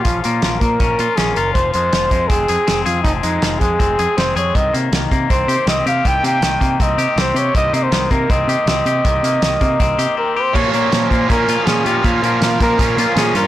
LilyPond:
<<
  \new Staff \with { instrumentName = "Trumpet" } { \time 4/4 \key bes \dorian \tempo 4 = 160 f'8 f'4 bes'4. aes'16. aes'32 bes'8 | c''8 c''4. aes'4. f'8 | ees'8 ees'4 aes'4. c''8 des''8 | ees''8 r4. c''4 ees''8 f''8 |
g''8 g''4. ees''4 c''8 des''8 | ees''8 ees''16 c''8. bes'8 ees''2~ | ees''2. bes'8 c''8 | des''8 des''4 c''8 bes'4 aes'8 g'8 |
f'8 f'4 bes'4 bes'8 aes'8 bes'8 | }
  \new Staff \with { instrumentName = "Clean electric guitar" } { \time 4/4 \key bes \dorian <f des' f'>8 bes8 f8 bes8 des'8 f'8 des'8 f'8 | f8 aes8 f8 aes8 c'8 aes'8 c'8 aes'8 | f8 aes8 f8 aes8 c'8 aes'8 c'8 aes'8 | ees8 bes8 ees8 bes8 c'8 g'8 c'8 g'8 |
ees8 bes8 ees8 bes8 c'8 g'8 c'8 g'8 | ees8 bes8 ees8 bes8 c'8 g'8 c'8 g'8 | ees8 bes8 ees8 bes8 c'8 g'8 c'8 g'8 | f8 bes8 f8 bes8 des'8 f'8 des'8 f'8 |
f8 bes8 f8 bes8 des'8 f'8 des'8 f'8 | }
  \new Staff \with { instrumentName = "Overdriven electric guitar" } { \time 4/4 \key bes \dorian r1 | r1 | r1 | r1 |
r1 | r1 | r1 | <bes, f bes des' f'>2 <bes, f bes des' f'>2 |
<bes, f bes des' f'>2 <bes, f bes des' f'>2 | }
  \new Staff \with { instrumentName = "Picked electric bass" } { \clef bass \time 4/4 \key bes \dorian bes,,8 bes,8 bes,,8 bes,8 bes,,8 bes,16 r16 bes,,8 ges,,8 | f,,8 f,8 f,,8 f,8 f,,8 f,16 r16 f,,8 f,8 | f,,8 f,8 f,,8 f,8 f,,8 f,16 r16 f,,8 f,8 | c,8 c8 c,8 c8 c,8 c16 r16 c,8 c8 |
c,8 c8 c,8 c8 c,8 c16 r16 c,8 c8 | c,8 c8 c,8 c8 c,8 c16 r16 c,8 c8 | c,8 c8 c,8 c8 c,8 c16 r4 r16 | bes,8 bes,8 bes,8 bes,8 bes,8 bes,16 r16 bes,8 bes,8 |
bes,8 bes,8 bes,8 bes,8 bes,8 bes,16 r16 bes,8 g,8 | }
  \new DrumStaff \with { instrumentName = "Drums" } \drummode { \time 4/4 <hh bd>8 hh8 <hh sn>8 <hh bd>8 <hh bd>8 hh8 <hh sn>8 hh8 | <hh bd>8 hh8 <hh sn>8 <hh bd>8 <hh bd>8 hh8 <hh sn>8 hh8 | <hh bd>8 hh8 <hh sn>8 <hh bd>8 <hh bd>8 hh8 <hh sn>8 hh8 | <hh bd>8 hh8 <hh sn>8 <hh bd>8 <hh bd>8 hh8 <hh sn>8 hh8 |
<hh bd>8 hh8 <hh sn>8 <hh bd>8 <hh bd>8 hh8 <hh sn>8 hh8 | <hh bd>8 hh8 <hh sn>8 <hh bd>8 <hh bd>8 hh8 <hh sn>8 hh8 | <hh bd>8 hh8 <hh sn>8 <hh bd>8 <hh bd>8 hh8 r4 | <cymc bd>8 hh8 <hh sn>8 <hh bd>8 <hh bd>8 hh8 <hh sn>8 hh8 |
<hh bd>8 hh8 <hh sn>8 <hh bd>8 <hh bd>8 hh8 <hh sn>8 hh8 | }
>>